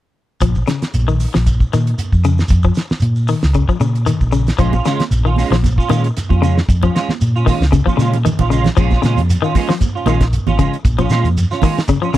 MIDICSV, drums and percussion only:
0, 0, Header, 1, 3, 480
1, 0, Start_track
1, 0, Key_signature, -5, "minor"
1, 0, Tempo, 521286
1, 386, Time_signature, 4, 2, 24, 8
1, 11213, End_track
2, 0, Start_track
2, 0, Title_t, "Shekere"
2, 375, Note_on_c, 9, 82, 75
2, 467, Note_off_c, 9, 82, 0
2, 506, Note_on_c, 9, 82, 23
2, 598, Note_off_c, 9, 82, 0
2, 617, Note_on_c, 9, 82, 53
2, 709, Note_off_c, 9, 82, 0
2, 754, Note_on_c, 9, 82, 25
2, 846, Note_off_c, 9, 82, 0
2, 865, Note_on_c, 9, 82, 74
2, 957, Note_off_c, 9, 82, 0
2, 998, Note_on_c, 9, 82, 27
2, 1090, Note_off_c, 9, 82, 0
2, 1104, Note_on_c, 9, 82, 49
2, 1196, Note_off_c, 9, 82, 0
2, 1235, Note_on_c, 9, 82, 22
2, 1327, Note_off_c, 9, 82, 0
2, 1353, Note_on_c, 9, 82, 76
2, 1445, Note_off_c, 9, 82, 0
2, 1480, Note_on_c, 9, 82, 27
2, 1572, Note_off_c, 9, 82, 0
2, 1594, Note_on_c, 9, 82, 58
2, 1686, Note_off_c, 9, 82, 0
2, 1722, Note_on_c, 9, 82, 25
2, 1814, Note_off_c, 9, 82, 0
2, 1826, Note_on_c, 9, 82, 67
2, 1919, Note_off_c, 9, 82, 0
2, 1960, Note_on_c, 9, 82, 22
2, 2052, Note_off_c, 9, 82, 0
2, 2064, Note_on_c, 9, 82, 62
2, 2156, Note_off_c, 9, 82, 0
2, 2190, Note_on_c, 9, 82, 24
2, 2282, Note_off_c, 9, 82, 0
2, 2284, Note_on_c, 9, 82, 76
2, 2376, Note_off_c, 9, 82, 0
2, 2418, Note_on_c, 9, 82, 25
2, 2510, Note_off_c, 9, 82, 0
2, 2529, Note_on_c, 9, 82, 54
2, 2621, Note_off_c, 9, 82, 0
2, 2662, Note_on_c, 9, 82, 25
2, 2754, Note_off_c, 9, 82, 0
2, 2760, Note_on_c, 9, 82, 64
2, 2852, Note_off_c, 9, 82, 0
2, 2907, Note_on_c, 9, 82, 26
2, 2999, Note_off_c, 9, 82, 0
2, 3018, Note_on_c, 9, 82, 51
2, 3110, Note_off_c, 9, 82, 0
2, 3152, Note_on_c, 9, 82, 24
2, 3244, Note_off_c, 9, 82, 0
2, 3262, Note_on_c, 9, 82, 82
2, 3354, Note_off_c, 9, 82, 0
2, 3398, Note_on_c, 9, 82, 27
2, 3490, Note_off_c, 9, 82, 0
2, 3502, Note_on_c, 9, 82, 60
2, 3594, Note_off_c, 9, 82, 0
2, 3641, Note_on_c, 9, 82, 22
2, 3733, Note_off_c, 9, 82, 0
2, 3739, Note_on_c, 9, 82, 76
2, 3831, Note_off_c, 9, 82, 0
2, 3873, Note_on_c, 9, 82, 24
2, 3965, Note_off_c, 9, 82, 0
2, 3979, Note_on_c, 9, 82, 57
2, 4071, Note_off_c, 9, 82, 0
2, 4112, Note_on_c, 9, 82, 26
2, 4204, Note_off_c, 9, 82, 0
2, 4218, Note_on_c, 9, 82, 80
2, 4310, Note_off_c, 9, 82, 0
2, 4356, Note_on_c, 9, 82, 27
2, 4449, Note_off_c, 9, 82, 0
2, 4466, Note_on_c, 9, 82, 56
2, 4558, Note_off_c, 9, 82, 0
2, 4607, Note_on_c, 9, 82, 25
2, 4699, Note_off_c, 9, 82, 0
2, 4709, Note_on_c, 9, 82, 72
2, 4801, Note_off_c, 9, 82, 0
2, 4843, Note_on_c, 9, 82, 24
2, 4935, Note_off_c, 9, 82, 0
2, 4962, Note_on_c, 9, 82, 57
2, 5054, Note_off_c, 9, 82, 0
2, 5089, Note_on_c, 9, 82, 23
2, 5182, Note_off_c, 9, 82, 0
2, 5207, Note_on_c, 9, 82, 83
2, 5299, Note_off_c, 9, 82, 0
2, 5341, Note_on_c, 9, 82, 28
2, 5433, Note_off_c, 9, 82, 0
2, 5448, Note_on_c, 9, 82, 66
2, 5541, Note_off_c, 9, 82, 0
2, 5581, Note_on_c, 9, 82, 27
2, 5673, Note_off_c, 9, 82, 0
2, 5688, Note_on_c, 9, 82, 69
2, 5780, Note_off_c, 9, 82, 0
2, 5820, Note_on_c, 9, 82, 25
2, 5912, Note_off_c, 9, 82, 0
2, 5928, Note_on_c, 9, 82, 62
2, 6020, Note_off_c, 9, 82, 0
2, 6060, Note_on_c, 9, 82, 27
2, 6152, Note_off_c, 9, 82, 0
2, 6168, Note_on_c, 9, 82, 79
2, 6260, Note_off_c, 9, 82, 0
2, 6293, Note_on_c, 9, 82, 26
2, 6385, Note_off_c, 9, 82, 0
2, 6408, Note_on_c, 9, 82, 54
2, 6500, Note_off_c, 9, 82, 0
2, 6541, Note_on_c, 9, 82, 25
2, 6633, Note_off_c, 9, 82, 0
2, 6639, Note_on_c, 9, 82, 71
2, 6731, Note_off_c, 9, 82, 0
2, 6778, Note_on_c, 9, 82, 25
2, 6870, Note_off_c, 9, 82, 0
2, 6885, Note_on_c, 9, 82, 53
2, 6977, Note_off_c, 9, 82, 0
2, 7016, Note_on_c, 9, 82, 26
2, 7108, Note_off_c, 9, 82, 0
2, 7122, Note_on_c, 9, 82, 85
2, 7214, Note_off_c, 9, 82, 0
2, 7259, Note_on_c, 9, 82, 27
2, 7351, Note_off_c, 9, 82, 0
2, 7360, Note_on_c, 9, 82, 67
2, 7452, Note_off_c, 9, 82, 0
2, 7499, Note_on_c, 9, 82, 23
2, 7591, Note_off_c, 9, 82, 0
2, 7605, Note_on_c, 9, 82, 81
2, 7697, Note_off_c, 9, 82, 0
2, 7727, Note_on_c, 9, 82, 24
2, 7819, Note_off_c, 9, 82, 0
2, 7839, Note_on_c, 9, 82, 60
2, 7931, Note_off_c, 9, 82, 0
2, 7963, Note_on_c, 9, 82, 27
2, 8055, Note_off_c, 9, 82, 0
2, 8075, Note_on_c, 9, 82, 84
2, 8167, Note_off_c, 9, 82, 0
2, 8205, Note_on_c, 9, 82, 25
2, 8297, Note_off_c, 9, 82, 0
2, 8312, Note_on_c, 9, 82, 57
2, 8404, Note_off_c, 9, 82, 0
2, 8449, Note_on_c, 9, 82, 29
2, 8541, Note_off_c, 9, 82, 0
2, 8561, Note_on_c, 9, 82, 79
2, 8653, Note_off_c, 9, 82, 0
2, 8691, Note_on_c, 9, 82, 29
2, 8783, Note_off_c, 9, 82, 0
2, 8797, Note_on_c, 9, 82, 55
2, 8889, Note_off_c, 9, 82, 0
2, 8928, Note_on_c, 9, 82, 25
2, 9020, Note_off_c, 9, 82, 0
2, 9036, Note_on_c, 9, 82, 87
2, 9129, Note_off_c, 9, 82, 0
2, 9175, Note_on_c, 9, 82, 29
2, 9267, Note_off_c, 9, 82, 0
2, 9274, Note_on_c, 9, 82, 64
2, 9367, Note_off_c, 9, 82, 0
2, 9402, Note_on_c, 9, 82, 25
2, 9494, Note_off_c, 9, 82, 0
2, 9512, Note_on_c, 9, 82, 81
2, 9604, Note_off_c, 9, 82, 0
2, 9643, Note_on_c, 9, 82, 25
2, 9735, Note_off_c, 9, 82, 0
2, 9751, Note_on_c, 9, 82, 62
2, 9843, Note_off_c, 9, 82, 0
2, 9882, Note_on_c, 9, 82, 27
2, 9974, Note_off_c, 9, 82, 0
2, 9990, Note_on_c, 9, 82, 84
2, 10082, Note_off_c, 9, 82, 0
2, 10115, Note_on_c, 9, 82, 27
2, 10207, Note_off_c, 9, 82, 0
2, 10216, Note_on_c, 9, 82, 66
2, 10309, Note_off_c, 9, 82, 0
2, 10357, Note_on_c, 9, 82, 29
2, 10449, Note_off_c, 9, 82, 0
2, 10473, Note_on_c, 9, 82, 82
2, 10565, Note_off_c, 9, 82, 0
2, 10600, Note_on_c, 9, 82, 28
2, 10692, Note_off_c, 9, 82, 0
2, 10707, Note_on_c, 9, 82, 63
2, 10799, Note_off_c, 9, 82, 0
2, 10839, Note_on_c, 9, 82, 26
2, 10931, Note_off_c, 9, 82, 0
2, 10939, Note_on_c, 9, 82, 87
2, 11031, Note_off_c, 9, 82, 0
2, 11077, Note_on_c, 9, 82, 30
2, 11169, Note_off_c, 9, 82, 0
2, 11178, Note_on_c, 9, 82, 75
2, 11213, Note_off_c, 9, 82, 0
2, 11213, End_track
3, 0, Start_track
3, 0, Title_t, "Drums"
3, 383, Note_on_c, 9, 42, 64
3, 386, Note_on_c, 9, 36, 70
3, 475, Note_off_c, 9, 42, 0
3, 478, Note_off_c, 9, 36, 0
3, 516, Note_on_c, 9, 36, 56
3, 608, Note_off_c, 9, 36, 0
3, 625, Note_on_c, 9, 42, 49
3, 630, Note_on_c, 9, 38, 61
3, 717, Note_off_c, 9, 42, 0
3, 722, Note_off_c, 9, 38, 0
3, 755, Note_on_c, 9, 42, 41
3, 760, Note_on_c, 9, 38, 58
3, 847, Note_off_c, 9, 42, 0
3, 852, Note_off_c, 9, 38, 0
3, 864, Note_on_c, 9, 42, 63
3, 956, Note_off_c, 9, 42, 0
3, 1104, Note_on_c, 9, 46, 56
3, 1196, Note_off_c, 9, 46, 0
3, 1241, Note_on_c, 9, 38, 69
3, 1333, Note_off_c, 9, 38, 0
3, 1348, Note_on_c, 9, 36, 51
3, 1350, Note_on_c, 9, 42, 60
3, 1440, Note_off_c, 9, 36, 0
3, 1442, Note_off_c, 9, 42, 0
3, 1477, Note_on_c, 9, 36, 58
3, 1569, Note_off_c, 9, 36, 0
3, 1594, Note_on_c, 9, 42, 42
3, 1599, Note_on_c, 9, 38, 22
3, 1686, Note_off_c, 9, 42, 0
3, 1691, Note_off_c, 9, 38, 0
3, 1722, Note_on_c, 9, 42, 45
3, 1814, Note_off_c, 9, 42, 0
3, 1830, Note_on_c, 9, 42, 71
3, 1922, Note_off_c, 9, 42, 0
3, 1956, Note_on_c, 9, 36, 54
3, 2048, Note_off_c, 9, 36, 0
3, 2067, Note_on_c, 9, 42, 46
3, 2159, Note_off_c, 9, 42, 0
3, 2202, Note_on_c, 9, 38, 59
3, 2294, Note_off_c, 9, 38, 0
3, 2304, Note_on_c, 9, 42, 62
3, 2306, Note_on_c, 9, 36, 83
3, 2396, Note_off_c, 9, 42, 0
3, 2398, Note_off_c, 9, 36, 0
3, 2434, Note_on_c, 9, 36, 60
3, 2526, Note_off_c, 9, 36, 0
3, 2548, Note_on_c, 9, 42, 47
3, 2553, Note_on_c, 9, 38, 62
3, 2640, Note_off_c, 9, 42, 0
3, 2645, Note_off_c, 9, 38, 0
3, 2680, Note_on_c, 9, 38, 64
3, 2772, Note_off_c, 9, 38, 0
3, 2782, Note_on_c, 9, 42, 65
3, 2874, Note_off_c, 9, 42, 0
3, 3023, Note_on_c, 9, 46, 56
3, 3115, Note_off_c, 9, 46, 0
3, 3156, Note_on_c, 9, 38, 69
3, 3248, Note_off_c, 9, 38, 0
3, 3262, Note_on_c, 9, 42, 53
3, 3263, Note_on_c, 9, 36, 55
3, 3354, Note_off_c, 9, 42, 0
3, 3355, Note_off_c, 9, 36, 0
3, 3394, Note_on_c, 9, 36, 59
3, 3486, Note_off_c, 9, 36, 0
3, 3506, Note_on_c, 9, 42, 43
3, 3598, Note_off_c, 9, 42, 0
3, 3641, Note_on_c, 9, 42, 42
3, 3733, Note_off_c, 9, 42, 0
3, 3751, Note_on_c, 9, 42, 62
3, 3843, Note_off_c, 9, 42, 0
3, 3875, Note_on_c, 9, 36, 57
3, 3968, Note_off_c, 9, 36, 0
3, 3993, Note_on_c, 9, 42, 42
3, 4085, Note_off_c, 9, 42, 0
3, 4122, Note_on_c, 9, 42, 38
3, 4127, Note_on_c, 9, 38, 59
3, 4214, Note_off_c, 9, 42, 0
3, 4219, Note_off_c, 9, 38, 0
3, 4226, Note_on_c, 9, 36, 78
3, 4228, Note_on_c, 9, 42, 55
3, 4319, Note_off_c, 9, 36, 0
3, 4320, Note_off_c, 9, 42, 0
3, 4356, Note_on_c, 9, 36, 50
3, 4356, Note_on_c, 9, 63, 78
3, 4448, Note_off_c, 9, 36, 0
3, 4448, Note_off_c, 9, 63, 0
3, 4472, Note_on_c, 9, 42, 49
3, 4476, Note_on_c, 9, 38, 64
3, 4564, Note_off_c, 9, 42, 0
3, 4568, Note_off_c, 9, 38, 0
3, 4591, Note_on_c, 9, 63, 59
3, 4602, Note_on_c, 9, 42, 44
3, 4607, Note_on_c, 9, 38, 57
3, 4683, Note_off_c, 9, 63, 0
3, 4694, Note_off_c, 9, 42, 0
3, 4699, Note_off_c, 9, 38, 0
3, 4715, Note_on_c, 9, 42, 60
3, 4807, Note_off_c, 9, 42, 0
3, 4938, Note_on_c, 9, 63, 69
3, 4956, Note_on_c, 9, 46, 59
3, 5031, Note_off_c, 9, 63, 0
3, 5049, Note_off_c, 9, 46, 0
3, 5087, Note_on_c, 9, 38, 69
3, 5179, Note_off_c, 9, 38, 0
3, 5185, Note_on_c, 9, 63, 58
3, 5192, Note_on_c, 9, 36, 53
3, 5195, Note_on_c, 9, 42, 51
3, 5199, Note_on_c, 9, 38, 25
3, 5277, Note_off_c, 9, 63, 0
3, 5284, Note_off_c, 9, 36, 0
3, 5287, Note_off_c, 9, 42, 0
3, 5291, Note_off_c, 9, 38, 0
3, 5321, Note_on_c, 9, 36, 64
3, 5413, Note_off_c, 9, 36, 0
3, 5427, Note_on_c, 9, 63, 88
3, 5435, Note_on_c, 9, 42, 46
3, 5519, Note_off_c, 9, 63, 0
3, 5527, Note_off_c, 9, 42, 0
3, 5564, Note_on_c, 9, 42, 44
3, 5656, Note_off_c, 9, 42, 0
3, 5678, Note_on_c, 9, 42, 67
3, 5683, Note_on_c, 9, 38, 29
3, 5770, Note_off_c, 9, 42, 0
3, 5775, Note_off_c, 9, 38, 0
3, 5804, Note_on_c, 9, 36, 60
3, 5807, Note_on_c, 9, 63, 78
3, 5896, Note_off_c, 9, 36, 0
3, 5899, Note_off_c, 9, 63, 0
3, 5917, Note_on_c, 9, 63, 62
3, 5923, Note_on_c, 9, 42, 49
3, 6009, Note_off_c, 9, 63, 0
3, 6015, Note_off_c, 9, 42, 0
3, 6055, Note_on_c, 9, 38, 59
3, 6147, Note_off_c, 9, 38, 0
3, 6157, Note_on_c, 9, 36, 91
3, 6166, Note_on_c, 9, 42, 62
3, 6249, Note_off_c, 9, 36, 0
3, 6258, Note_off_c, 9, 42, 0
3, 6286, Note_on_c, 9, 36, 55
3, 6286, Note_on_c, 9, 63, 84
3, 6378, Note_off_c, 9, 36, 0
3, 6378, Note_off_c, 9, 63, 0
3, 6408, Note_on_c, 9, 42, 51
3, 6412, Note_on_c, 9, 38, 66
3, 6500, Note_off_c, 9, 42, 0
3, 6504, Note_off_c, 9, 38, 0
3, 6530, Note_on_c, 9, 63, 58
3, 6533, Note_on_c, 9, 38, 63
3, 6622, Note_off_c, 9, 63, 0
3, 6625, Note_off_c, 9, 38, 0
3, 6644, Note_on_c, 9, 42, 61
3, 6736, Note_off_c, 9, 42, 0
3, 6878, Note_on_c, 9, 36, 64
3, 6878, Note_on_c, 9, 63, 73
3, 6884, Note_on_c, 9, 46, 61
3, 6970, Note_off_c, 9, 36, 0
3, 6970, Note_off_c, 9, 63, 0
3, 6976, Note_off_c, 9, 46, 0
3, 7018, Note_on_c, 9, 38, 74
3, 7111, Note_off_c, 9, 38, 0
3, 7116, Note_on_c, 9, 63, 82
3, 7118, Note_on_c, 9, 36, 58
3, 7123, Note_on_c, 9, 42, 63
3, 7208, Note_off_c, 9, 63, 0
3, 7210, Note_off_c, 9, 36, 0
3, 7215, Note_off_c, 9, 42, 0
3, 7248, Note_on_c, 9, 36, 62
3, 7248, Note_on_c, 9, 63, 83
3, 7340, Note_off_c, 9, 36, 0
3, 7340, Note_off_c, 9, 63, 0
3, 7367, Note_on_c, 9, 42, 49
3, 7367, Note_on_c, 9, 63, 72
3, 7371, Note_on_c, 9, 38, 25
3, 7459, Note_off_c, 9, 42, 0
3, 7459, Note_off_c, 9, 63, 0
3, 7464, Note_off_c, 9, 38, 0
3, 7491, Note_on_c, 9, 64, 61
3, 7492, Note_on_c, 9, 42, 43
3, 7583, Note_off_c, 9, 64, 0
3, 7584, Note_off_c, 9, 42, 0
3, 7601, Note_on_c, 9, 42, 65
3, 7604, Note_on_c, 9, 64, 92
3, 7693, Note_off_c, 9, 42, 0
3, 7696, Note_off_c, 9, 64, 0
3, 7724, Note_on_c, 9, 64, 92
3, 7729, Note_on_c, 9, 36, 51
3, 7816, Note_off_c, 9, 64, 0
3, 7821, Note_off_c, 9, 36, 0
3, 7846, Note_on_c, 9, 42, 49
3, 7938, Note_off_c, 9, 42, 0
3, 7959, Note_on_c, 9, 64, 73
3, 7971, Note_on_c, 9, 42, 38
3, 7975, Note_on_c, 9, 38, 59
3, 8051, Note_off_c, 9, 64, 0
3, 8063, Note_off_c, 9, 42, 0
3, 8067, Note_off_c, 9, 38, 0
3, 8081, Note_on_c, 9, 36, 98
3, 8088, Note_on_c, 9, 49, 73
3, 8174, Note_off_c, 9, 36, 0
3, 8180, Note_off_c, 9, 49, 0
3, 8202, Note_on_c, 9, 63, 76
3, 8210, Note_on_c, 9, 36, 66
3, 8220, Note_on_c, 9, 38, 30
3, 8294, Note_off_c, 9, 63, 0
3, 8302, Note_off_c, 9, 36, 0
3, 8312, Note_off_c, 9, 38, 0
3, 8325, Note_on_c, 9, 42, 52
3, 8330, Note_on_c, 9, 38, 66
3, 8417, Note_off_c, 9, 42, 0
3, 8422, Note_off_c, 9, 38, 0
3, 8440, Note_on_c, 9, 63, 69
3, 8456, Note_on_c, 9, 42, 48
3, 8532, Note_off_c, 9, 63, 0
3, 8548, Note_off_c, 9, 42, 0
3, 8565, Note_on_c, 9, 42, 77
3, 8657, Note_off_c, 9, 42, 0
3, 8794, Note_on_c, 9, 63, 71
3, 8794, Note_on_c, 9, 64, 80
3, 8796, Note_on_c, 9, 36, 69
3, 8800, Note_on_c, 9, 46, 61
3, 8886, Note_off_c, 9, 63, 0
3, 8886, Note_off_c, 9, 64, 0
3, 8888, Note_off_c, 9, 36, 0
3, 8892, Note_off_c, 9, 46, 0
3, 8933, Note_on_c, 9, 38, 72
3, 9025, Note_off_c, 9, 38, 0
3, 9027, Note_on_c, 9, 63, 57
3, 9033, Note_on_c, 9, 36, 61
3, 9033, Note_on_c, 9, 42, 62
3, 9120, Note_off_c, 9, 63, 0
3, 9125, Note_off_c, 9, 36, 0
3, 9125, Note_off_c, 9, 42, 0
3, 9263, Note_on_c, 9, 63, 93
3, 9277, Note_on_c, 9, 42, 53
3, 9355, Note_off_c, 9, 63, 0
3, 9369, Note_off_c, 9, 42, 0
3, 9397, Note_on_c, 9, 42, 49
3, 9399, Note_on_c, 9, 36, 63
3, 9402, Note_on_c, 9, 38, 58
3, 9489, Note_off_c, 9, 42, 0
3, 9492, Note_off_c, 9, 36, 0
3, 9494, Note_off_c, 9, 38, 0
3, 9511, Note_on_c, 9, 42, 73
3, 9603, Note_off_c, 9, 42, 0
3, 9637, Note_on_c, 9, 63, 80
3, 9637, Note_on_c, 9, 64, 67
3, 9730, Note_off_c, 9, 63, 0
3, 9730, Note_off_c, 9, 64, 0
3, 9747, Note_on_c, 9, 64, 76
3, 9750, Note_on_c, 9, 36, 70
3, 9752, Note_on_c, 9, 42, 60
3, 9839, Note_off_c, 9, 64, 0
3, 9842, Note_off_c, 9, 36, 0
3, 9844, Note_off_c, 9, 42, 0
3, 9886, Note_on_c, 9, 42, 45
3, 9978, Note_off_c, 9, 42, 0
3, 9988, Note_on_c, 9, 36, 90
3, 9992, Note_on_c, 9, 42, 72
3, 10080, Note_off_c, 9, 36, 0
3, 10084, Note_off_c, 9, 42, 0
3, 10116, Note_on_c, 9, 63, 87
3, 10117, Note_on_c, 9, 36, 60
3, 10208, Note_off_c, 9, 63, 0
3, 10209, Note_off_c, 9, 36, 0
3, 10231, Note_on_c, 9, 42, 49
3, 10235, Note_on_c, 9, 38, 68
3, 10323, Note_off_c, 9, 42, 0
3, 10328, Note_off_c, 9, 38, 0
3, 10361, Note_on_c, 9, 63, 61
3, 10366, Note_on_c, 9, 42, 48
3, 10453, Note_off_c, 9, 63, 0
3, 10458, Note_off_c, 9, 42, 0
3, 10474, Note_on_c, 9, 42, 68
3, 10566, Note_off_c, 9, 42, 0
3, 10608, Note_on_c, 9, 38, 28
3, 10698, Note_on_c, 9, 63, 74
3, 10698, Note_on_c, 9, 64, 77
3, 10701, Note_off_c, 9, 38, 0
3, 10708, Note_on_c, 9, 36, 69
3, 10716, Note_on_c, 9, 46, 63
3, 10790, Note_off_c, 9, 63, 0
3, 10790, Note_off_c, 9, 64, 0
3, 10800, Note_off_c, 9, 36, 0
3, 10808, Note_off_c, 9, 46, 0
3, 10851, Note_on_c, 9, 38, 82
3, 10943, Note_off_c, 9, 38, 0
3, 10947, Note_on_c, 9, 36, 64
3, 10954, Note_on_c, 9, 42, 61
3, 11039, Note_off_c, 9, 36, 0
3, 11046, Note_off_c, 9, 42, 0
3, 11184, Note_on_c, 9, 63, 93
3, 11213, Note_off_c, 9, 63, 0
3, 11213, End_track
0, 0, End_of_file